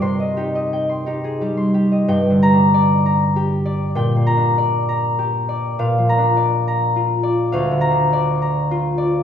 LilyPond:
<<
  \new Staff \with { instrumentName = "Harp" } { \time 3/4 \key c \minor \tempo 4 = 99 << { c'''2. | \key g \minor r8 bes''2~ bes''8~ | bes''8 bes''2~ bes''8~ | bes''8 bes''2~ bes''8~ |
bes''8 bes''2~ bes''8 | } \\ { g'16 ees''16 g'16 ees''16 g''16 c'''16 g'16 aes'16 g'16 c'''16 g'16 ees''16 | g''4 d''8 bes''8 g'8 d''8 | g''4 d''8 bes''8 g'8 d''8 | f''4 d''8 bes''8 f'8 d''8 |
f''4 d''8 bes''8 f'8 d''8 | } >> }
  \new Staff \with { instrumentName = "Harp" } { \clef bass \time 3/4 \key c \minor c8 ees'4 ees'8 g4 | \key g \minor \tuplet 3/2 { g,8 d8 d'8~ } d'2 | \tuplet 3/2 { bes,8 bes8 d'8~ } d'2 | \tuplet 3/2 { bes,8 f8 d'8~ } d'2 |
\tuplet 3/2 { d,8 d8 d'8~ } d'2 | }
>>